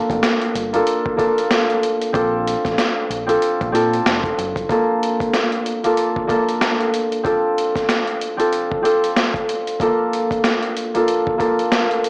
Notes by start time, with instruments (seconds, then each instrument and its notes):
Already playing: harp A#3 C4 D4 F4 A4
0.10 fingered electric bass F1, kick, closed hi-hat
0.23 snare, closed hi-hat
0.42 closed hi-hat
0.55 fingered electric bass G1, closed hi-hat
0.73 harp A#3 D4 F4 A4, closed hi-hat
0.87 closed hi-hat
1.06 kick
1.17 harp A#3 D4 F4 A4, kick, closed hi-hat
1.38 closed hi-hat
1.51 snare, closed hi-hat
1.70 closed hi-hat
1.83 closed hi-hat
2.02 closed hi-hat
2.13 fingered electric bass A#1, harp C4 D4 F4 A4, kick, closed hi-hat
2.48 closed hi-hat
2.65 fingered electric bass A1, kick, snare, closed hi-hat
2.78 snare, closed hi-hat
3.10 fingered electric bass A#1, closed hi-hat
3.26 harp C4 D4 F4 A4, closed hi-hat
3.42 closed hi-hat
3.61 fingered electric bass A#1, kick, closed hi-hat
3.72 fingered electric bass A#2, harp C4 D4 F4 A4, closed hi-hat
3.94 closed hi-hat
4.06 fingered electric bass F1, snare, closed hi-hat
4.24 kick, closed hi-hat
4.38 fingered electric bass F#1, closed hi-hat
4.56 kick, closed hi-hat
4.69 harp A#3 D4 F4 A4, kick, closed hi-hat
5.03 closed hi-hat
5.20 kick, closed hi-hat
5.34 snare, closed hi-hat
5.52 closed hi-hat
5.66 closed hi-hat
5.83 harp A#3 D4 F4 A4, closed hi-hat
5.97 closed hi-hat
6.16 kick
6.27 harp A#3 D4 F4 A4, kick, closed hi-hat
6.49 closed hi-hat
6.61 snare, closed hi-hat
6.80 closed hi-hat
6.94 closed hi-hat
7.12 closed hi-hat
7.23 harp C4 D4 F4 A4, kick, closed hi-hat
7.58 closed hi-hat
7.75 kick, snare, closed hi-hat
7.89 snare, closed hi-hat
8.07 closed hi-hat
8.21 closed hi-hat
8.37 harp C4 D4 F4 A4, closed hi-hat
8.53 closed hi-hat
8.72 kick
8.82 harp C4 D4 F4 A4, closed hi-hat
9.04 closed hi-hat
9.16 snare, closed hi-hat
9.34 kick, closed hi-hat
9.49 closed hi-hat
9.67 closed hi-hat
9.80 harp A#3 D4 F4 A4, kick, closed hi-hat
10.13 closed hi-hat
10.31 kick, closed hi-hat
10.44 snare, closed hi-hat
10.63 closed hi-hat
10.77 closed hi-hat
10.94 harp A#3 D4 F4 A4, closed hi-hat
11.08 closed hi-hat
11.27 kick
11.38 harp A#3 D4 F4 A4, kick, closed hi-hat
11.59 closed hi-hat
11.72 snare, closed hi-hat
11.91 closed hi-hat
12.04 closed hi-hat